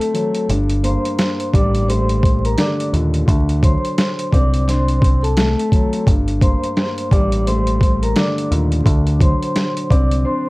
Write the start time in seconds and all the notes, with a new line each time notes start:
Already playing: F#3 A3 C4 D4 A4 A5
0.01 closed hi-hat
0.14 F#3, closed hi-hat
0.34 closed hi-hat
0.49 G1 G2, closed hi-hat
0.69 closed hi-hat
0.83 A#3 C5 C6, closed hi-hat
1.05 closed hi-hat
1.18 snare, closed hi-hat
1.40 closed hi-hat
1.53 A1 G3 D5 D6, kick, closed hi-hat
1.74 closed hi-hat
1.88 A3 C5 C6, closed hi-hat
2.09 closed hi-hat
2.23 G3, kick, closed hi-hat
2.45 A#4 A#5, closed hi-hat
2.58 D3 D5 D6, snare, closed hi-hat
2.80 closed hi-hat
2.92 D#2 A#2, closed hi-hat
3.14 closed hi-hat
3.26 D2 D3, kick, closed hi-hat
3.49 closed hi-hat
3.61 F#3 C5 C6, kick, closed hi-hat
3.85 closed hi-hat
3.98 snare, closed hi-hat
4.19 closed hi-hat
4.31 C2 C4 D5 D6, kick, closed hi-hat
4.54 closed hi-hat
4.68 D4 C5 C6, snare, closed hi-hat
4.88 closed hi-hat
5.01 C4, kick, closed hi-hat
5.23 A4 A5, closed hi-hat
5.37 A3, snare, closed hi-hat
5.59 closed hi-hat
5.72 F#3, kick, closed hi-hat
5.93 closed hi-hat
6.07 G1 G2, kick, closed hi-hat
6.28 closed hi-hat
6.42 A#3 C5 C6, kick, closed hi-hat
6.64 closed hi-hat
6.77 snare, closed hi-hat
6.98 closed hi-hat
7.12 A1 G3 D5 D6, kick, closed hi-hat
7.32 closed hi-hat
7.46 A3 C5 C6, closed hi-hat
7.67 closed hi-hat
7.81 G3, kick, closed hi-hat
8.02 A#4 A#5, closed hi-hat
8.16 D3 D5 D6, snare, closed hi-hat
8.38 closed hi-hat
8.51 D#2 A#2, closed hi-hat
8.72 closed hi-hat
8.84 D2 D3, kick, closed hi-hat
9.07 closed hi-hat
9.19 F#3 C5 C6, kick, closed hi-hat
9.42 closed hi-hat
9.56 snare, closed hi-hat
9.77 closed hi-hat
9.90 C2 C4 D5 D6, kick, closed hi-hat
10.12 closed hi-hat
10.25 D4 C5 C6